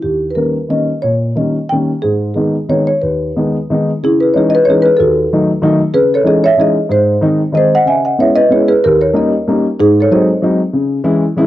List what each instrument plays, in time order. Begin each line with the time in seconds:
0.03 upright piano D#2, marimba G4
0.31 marimba B4
0.35 upright piano D#3 G3 A#3 C#4, marimba A#4
0.69 upright piano D#3 G3 A#3 C#4, marimba D#5
1.02 upright piano A#2, marimba C#5
1.35 upright piano D#3 G3 A#3 C#4, marimba D#5
1.69 upright piano D#3 G3 A#3 C#4, marimba G5
2.02 upright piano G#2, marimba G#4
2.34 upright piano D#3 G#3 B3 D#4, marimba G#4
2.69 upright piano D#3 G#3 B3 D#4, marimba C#5
2.87 marimba C#5
3.02 upright piano D#2, marimba B4
3.36 upright piano D#3 G#3 B3 D#4
3.70 upright piano D#3 G#3 B3 D#4
4.03 upright piano C#3, marimba E4 G#4
4.20 marimba G#4 B4
4.34 upright piano E3 G#3 C#4 D#4, marimba G#4 C#5
4.50 marimba D#5
4.55 marimba B4
4.65 upright piano E3 G#3 C#4, marimba C#5
4.70 upright piano D#4, marimba G#4
4.82 marimba G#4 B4
4.97 upright piano D#2, marimba F#4 A4
5.32 upright piano D#3 F#3 A3 D#4
5.62 upright piano D#3 F#3 A3 D#4
5.94 upright piano C#3, marimba G#4 B4
6.14 marimba A4 C#5
6.24 upright piano E3 G#3 C#4 D#4, marimba G#4 D#5
6.44 marimba C#5 E5
6.57 upright piano E3 G#3 C#4 D#4, marimba G#4 D#5
6.89 upright piano G#2, marimba G#4 C5
7.21 upright piano D#3 G#3 C4 D#4
7.52 upright piano D#3 G#3 C4 D#4, marimba D#5
7.57 marimba C5
7.75 marimba D#5 F#5
7.86 upright piano C#3, marimba E5 G#5
8.05 marimba D#5 F#5
8.19 upright piano G#3 B3 C#4 E4, marimba C#5 E5
8.36 marimba B4 D#5
8.49 upright piano G#3 B3 C#4 E4, marimba G#4 C#5
8.68 marimba G#4 B4
8.84 upright piano D#2, marimba G4 A#4
9.01 marimba A#4 C#5
9.13 upright piano G3 A#3 C#4 D#4, marimba A#4 D#5
9.48 upright piano G3 A#3 C#4 D#4
9.79 upright piano G#2, marimba D#4 G#4
10.00 marimba A4 C#5
10.11 upright piano F#3 G#3 C4 D#4, marimba C5 D#5
10.42 upright piano F#3 G#3 C4 D#4
10.73 upright piano C#3
11.04 upright piano E3 G#3 C#4 E4
11.37 upright piano E3 G#3 C#4 E4